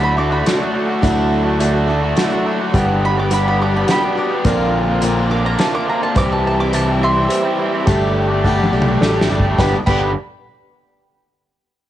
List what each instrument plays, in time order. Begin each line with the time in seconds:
Already playing: fingered electric bass D2, overdriven electric guitar D3, steel-string acoustic guitar F#3 A3 D4 E4, reed electric piano F#4 D5 F#5, string section F#4 D5 E5 A5
0.02 overdriven electric guitar A3 D4 F#4, mandolin B5
0.16 overdriven electric guitar D3 A3 D4 F#4, steel-string acoustic guitar E4, mandolin D6
0.30 overdriven electric guitar A3 D4 F#4, mandolin B5
0.45 steel-string acoustic guitar F#3 A3 D4 E4, reed electric piano F#4 D5 F#5, mandolin D6, snare, closed hi-hat
0.59 overdriven electric guitar A3 D4 F#4
0.73 overdriven electric guitar D3 A3 D4 F#4
0.87 overdriven electric guitar A3 D4 F#4
1.02 fingered electric bass D2, overdriven electric guitar D3 A3 D4 F#4, steel-string acoustic guitar F#3 E4, reed electric piano F#4 D5 F#5, kick, closed hi-hat
1.44 overdriven electric guitar A3 D4 F#4
1.59 overdriven electric guitar D3 A3 D4 F#4, steel-string acoustic guitar F#3 E4, reed electric piano F#4 D5 E5, closed hi-hat
1.73 overdriven electric guitar A3 D4 F#4
1.87 overdriven electric guitar D3 A3 D4 F#4, steel-string acoustic guitar E4, reed electric piano A5
2.02 overdriven electric guitar A3 D4 F#4
2.16 steel-string acoustic guitar F#3 A3 D4 E4, reed electric piano F#4 D5 E5 F#5, snare, closed hi-hat
2.30 overdriven electric guitar A3 D4 F#4
2.45 overdriven electric guitar D3 A3 D4 F#4, reed electric piano E5
2.59 overdriven electric guitar A3 D4 F#4
2.73 fingered electric bass G1, overdriven electric guitar G2 D3 G3 B3 D4 G4, string section G4 F#5 B5, reed electric piano G4 B4 F#5, kick, closed hi-hat
3.05 mandolin B5
3.17 overdriven electric guitar G3 B3 D4 G4, mandolin D6
3.30 overdriven electric guitar G2 D3 G3 B3 D4 G4, reed electric piano G4 B4 F#5, mandolin B5, closed hi-hat
3.45 overdriven electric guitar G3 B3 D4 G4, mandolin B5
3.60 overdriven electric guitar G3 B3 D4 G4, mandolin D6
3.74 overdriven electric guitar G3 B3 D4 G4, mandolin B5
3.87 steel-string acoustic guitar G3 B3 D4 F#4, reed electric piano G4 B4 F#5, mandolin G5 B5, snare, closed hi-hat
4.03 overdriven electric guitar G3 B3 D4 G4
4.15 overdriven electric guitar G3 B3 D4 G4, steel-string acoustic guitar F#4
4.30 overdriven electric guitar G3 B3 D4 G4
4.45 fingered electric bass A#1, overdriven electric guitar A#2 D3 A#3 D4 F4, steel-string acoustic guitar C4, string section F4 A#5, reed electric piano A#4 C5 D5, kick, closed hi-hat
4.88 overdriven electric guitar A#3 D4 F4
5.01 overdriven electric guitar A#2 D3 A#3 D4 F4, steel-string acoustic guitar C4, reed electric piano A#4 C5 D5, closed hi-hat
5.15 overdriven electric guitar A#3 D4 F4
5.29 overdriven electric guitar D3 A#3 D4 F4, steel-string acoustic guitar C4, mandolin D6
5.43 overdriven electric guitar A#3 D4 F4, mandolin A#5
5.58 steel-string acoustic guitar D3 A#3 C4 F4, reed electric piano A#4 C5 E5, mandolin A5, snare, closed hi-hat
5.73 overdriven electric guitar A#3 D4 F4, mandolin D6
5.86 overdriven electric guitar D3 A#3 D4 F4, mandolin A#5
6.01 overdriven electric guitar A#3 D4 F4, mandolin A5
6.15 fingered electric bass C2, overdriven electric guitar C3 E3 G3 C4 E4, string section G4 E5 G5, reed electric piano B4 C5 E5, mandolin D6, kick, closed hi-hat
6.32 mandolin A5
6.47 mandolin A5
6.59 overdriven electric guitar G3 C4 E4, mandolin D6
6.72 overdriven electric guitar C3 E3 G3 C4 E4, reed electric piano B4 C5 E5, mandolin A5, closed hi-hat
6.87 overdriven electric guitar G3 C4 E4, mandolin A5
7.01 overdriven electric guitar E3 G3 C4 E4, mandolin E5 C6
7.15 overdriven electric guitar G3 C4 E4
7.29 steel-string acoustic guitar E3 G3 E4, reed electric piano G4 C5 E5, closed hi-hat
7.43 overdriven electric guitar G3 C4 E4
7.57 overdriven electric guitar E3 G3 C4 E4
7.72 overdriven electric guitar G3 C4 E4
7.85 fingered electric bass G1, overdriven electric guitar G3 A3 D4 G4, reed electric piano A4 D5 G5, string section A4 D5 A5, kick, closed hi-hat
8.28 overdriven electric guitar A3 D4 G4
8.44 overdriven electric guitar G3 A3 D4 G4, reed electric piano A4 D5 F#5, kick
8.58 overdriven electric guitar A3 D4 G4
8.63 high tom
8.71 fingered electric bass B1, overdriven electric guitar G3 A3 D4 G4
8.82 mid tom
8.86 overdriven electric guitar A3 D4 G4
9.01 fingered electric bass A1, steel-string acoustic guitar G3 A3 D4, reed electric piano A4 D5 G5, snare
9.06 steel-string acoustic guitar G4
9.15 overdriven electric guitar A3 D4 G4
9.21 snare
9.29 fingered electric bass G1, overdriven electric guitar G3 A3 D4 G4
9.40 kick
9.44 overdriven electric guitar A3 D4 G4
9.58 fingered electric bass G1, overdriven electric guitar G2 D3 G3 B3 D4 G4, string section D4 G4 B4 G5, reed electric piano B4 D5 G5, mandolin B5, kick, snare
9.86 fingered electric bass G1, overdriven electric guitar G2 D3 G3 B3 D4 G4, reed electric piano B4 D5 G5, mandolin B5, kick, crash